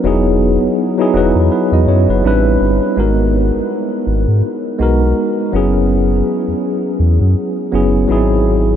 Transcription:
0.03 0.58 E1 loud
0.03 0.84 F#3 medium
0.03 0.84 B3 medium
0.03 0.85 D#4 medium
0.03 0.85 E4 medium
0.03 0.86 G#4 medium
0.62 0.68 E1 soft
0.98 1.12 F#3 medium
0.98 1.12 B3 medium
0.98 1.12 D#4 medium
0.98 1.13 E4 medium
0.98 1.13 G#4 loud
1.13 1.34 E1 medium
1.13 2.24 F#3 medium
1.13 2.24 B3 medium
1.13 1.51 D#4 medium
1.13 1.52 E4 medium
1.13 1.51 B4 medium
1.35 1.50 E2 medium
1.52 1.72 D#4 medium
1.52 1.72 B4 medium
1.72 1.86 E2 loud
1.72 1.88 F#4 medium
1.72 1.87 D#5 medium
1.87 2.07 F#2 medium
1.87 2.08 E4 medium
1.87 2.08 C#5 medium
2.09 2.23 F#1 loud
2.09 2.44 D#4 medium
2.09 2.26 B4 medium
2.23 2.58 A1 loud
2.23 2.88 G3 medium
2.23 2.89 C4 medium
2.23 2.89 D4 medium
2.23 2.90 E4 medium
2.23 2.90 B4 loud
2.61 2.80 G1 medium
2.96 3.51 G#1 loud
2.96 4.25 G#3 medium
2.96 4.26 B3 medium
2.96 4.26 D#4 medium
2.96 4.27 F#4 medium
2.96 4.27 A#4 medium
3.55 3.61 G#1 soft
4.07 4.26 G#1 medium
4.28 4.42 G#2 medium
4.79 5.14 B1 medium
4.79 5.53 G#3 medium
4.79 5.52 B3 medium
4.79 5.54 D#4 medium
4.79 5.54 F#4 medium
4.79 5.54 A#4 medium
5.52 6.22 F#1 loud
5.52 6.82 F#3 medium
5.52 6.82 B3 medium
5.52 6.82 C#4 medium
5.52 6.83 E4 medium
5.52 6.83 G#4 medium
6.48 6.54 E2 soft
7.00 7.19 E2 loud
7.21 7.35 F#2 medium
7.72 8.06 F#1 medium
7.72 8.07 F#3 medium
7.72 8.08 B3 medium
7.72 8.10 C#4 medium
7.72 8.10 E4 medium
7.72 8.11 G#4 medium
8.08 8.76 G#1 loud
8.08 8.73 F#3 medium
8.08 8.17 B3 medium
8.08 8.74 D#4 medium
8.08 8.75 E4 medium
8.08 8.75 G#4 medium
8.16 8.76 C4 medium

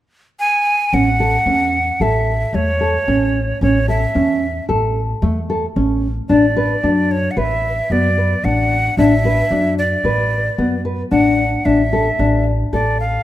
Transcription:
0.40 0.95 G#5 medium
0.93 1.36 A1 medium
0.93 1.09 C#4 medium
0.93 2.03 F#5 medium
1.20 1.35 A4 medium
1.46 1.89 E2 medium
1.46 1.77 C#4 medium
2.00 2.43 A1 medium
2.00 2.31 A4 medium
2.00 2.56 E5 medium
2.53 2.96 E2 medium
2.53 2.69 A3 medium
2.53 3.61 C#5 medium
2.81 2.96 A4 medium
3.08 3.50 A1 medium
3.08 3.38 C#4 medium
3.61 4.04 A1 medium
3.61 3.77 C#4 medium
3.61 3.87 C#5 medium
3.88 4.03 A4 medium
3.88 4.65 E5 medium
4.15 4.58 E2 medium
4.15 4.45 C#4 medium
4.69 5.12 A1 medium
4.69 4.99 A4 medium
5.22 5.65 E2 medium
5.22 5.37 A3 medium
5.50 5.65 A4 medium
5.76 6.19 A1 medium
5.76 6.07 C#4 medium
6.29 6.72 A1 medium
6.29 6.45 D4 medium
6.29 7.13 D5 medium
6.56 6.72 B4 medium
6.83 7.26 F#2 medium
6.83 7.14 D4 medium
7.11 7.32 C#5 medium
7.31 7.40 F#5 medium
7.37 7.79 A1 medium
7.37 7.67 B4 medium
7.37 7.94 E5 medium
7.90 8.33 F#2 medium
7.90 8.06 B3 medium
7.90 8.46 D5 medium
8.18 8.33 B4 medium
8.44 8.87 A1 medium
8.44 8.75 D4 medium
8.44 8.98 F#5 medium
8.97 9.40 A1 medium
8.97 9.13 D4 medium
8.97 9.74 E5 medium
9.25 9.40 B4 medium
9.51 9.94 F#2 medium
9.51 9.82 D4 medium
9.78 10.82 D5 medium
10.04 10.47 A1 medium
10.04 10.35 B4 medium
10.58 11.01 F#2 medium
10.58 10.74 B3 medium
10.85 11.00 B4 medium
11.11 11.55 A1 medium
11.11 11.42 D4 medium
11.11 11.67 F#5 medium
11.65 12.08 A1 medium
11.65 11.81 D4 medium
11.65 12.46 E5 medium
11.93 12.08 A4 medium
12.19 12.62 A1 medium
12.19 12.50 D4 medium
12.73 13.16 A1 medium
12.73 13.04 A4 medium
12.73 12.98 D5 medium
13.00 13.23 F5 medium

